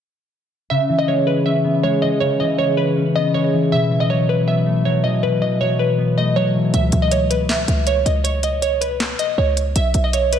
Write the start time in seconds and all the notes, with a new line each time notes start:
0.70 C#3 E5
0.89 E3
0.99 D#5
1.08 G#3 C#5
1.27 B4
1.45 C#4 E5
1.64 B3
1.83 G#3 C#5
2.02 E3 D#5
2.20 C#3 C#5
2.40 E3 D#5
2.58 G#3 C#5
2.77 B4
2.96 C#4
3.16 B3 D#5
3.34 G#3 C#5
3.53 E3
3.72 B2 E5
3.91 E3
4.00 D#5
4.10 F#3 C#5
4.29 B4
4.47 B3 E5
4.66 A3
4.85 F#3 C#5
5.04 E3 D#5
5.23 B2 B4
5.41 E3 D#5
5.60 F#3 C#5
5.79 B4
5.98 B3
6.17 A3 D#5
6.36 F#3 C#5
6.55 E3
6.74 C#2 E5, closed hi-hat
6.92 C#2, closed hi-hat
7.02 D#5
7.11 C#5, closed hi-hat
7.30 B4, closed hi-hat
7.49 E5, snare, clap, closed hi-hat
7.68 C#2, closed hi-hat
7.87 C#5, closed hi-hat
8.06 C#2 D#5, closed hi-hat
8.24 C#5, closed hi-hat
8.43 D#5, closed hi-hat
8.62 C#5, closed hi-hat
8.81 B4, closed hi-hat
9.00 snare, clap, closed hi-hat
9.19 D#5, closed hi-hat
9.38 C#2 C#5
9.57 closed hi-hat
9.76 B1 E5, closed hi-hat
9.94 B1, closed hi-hat
10.04 D#5
10.13 C#5, closed hi-hat
10.33 B4, closed hi-hat